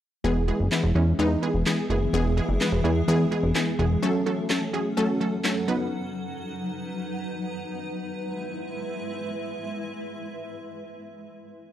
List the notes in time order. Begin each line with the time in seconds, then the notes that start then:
0.24 E1 E3 G#3 B3 G#4 E5
0.48 E3 G#3 B3 G#4
0.60 F#1
0.71 E3 G#3 B3 E4, snare, clap
0.83 E1
0.95 E2 E3 G#3 B3 C#4
1.19 E2 E3 G#3 B3 D#4
1.42 E3 G#3 B3 G#4
1.54 E1
1.66 E3 G#3 B3 G#4, snare, clap
1.90 F#1 E3 G#3 B3 G#4
2.13 E1 E3 G#3 B3 G#4
2.37 E3 G#3 B3 G#4
2.49 F#1
2.61 E3 G#3 B3 B4, snare, clap
2.72 E1
2.84 E2 E3 G#3 B3 G#4
3.08 E2 E3 G#3 B3 G#4
3.31 E3 G#3 B3 G#4
3.43 E1
3.55 E3 G#3 B3 G#4, snare, clap
3.79 E1 E3 G#3 B3 G#4
4.02 F#3 A3 C#4 A4 F#5
4.26 F#3 A3 C#4 A4
4.50 F#3 A3 C#4 A4, snare, clap
4.73 F#3 A3 C#4 G#4
4.97 F#3 A3 C#4 A4
5.21 F#3 A3 C#4 A4
5.44 F#3 A3 C#4 A4, snare, clap
5.68 F#3 B3 D#4 B4
7.81 G#3 E4 B4 E5